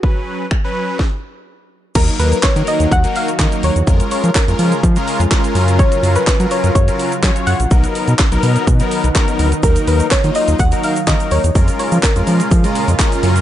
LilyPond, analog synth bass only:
\new Staff \with { instrumentName = "Analog synth bass" } { \clef bass \time 4/4 \key des \mixolydian \tempo 4 = 125 r1 | ees,8 ees,8 ees16 ees16 r16 ees,16 ees,8 r8 ees16 r16 ees,16 fes,16 | f,8 r16 f16 r16 f,16 f8 f8 r16 f,16 r8 ges,8~ | ges,8 ges,8 ges16 ges16 r16 ges,16 ges,8 r8 ges16 r16 ges,16 bes,,16 |
b,,8 r16 b,16 r16 b,,16 b,8 b,8 r16 b,,16 r8 d,8 | ees,8 ees,8 ees16 ees16 r16 ees,16 ees,8 r8 ees16 r16 ees,16 fes,16 | f,8 r16 f16 r16 f,16 f8 f8 r16 f,16 r8 ges,8 | }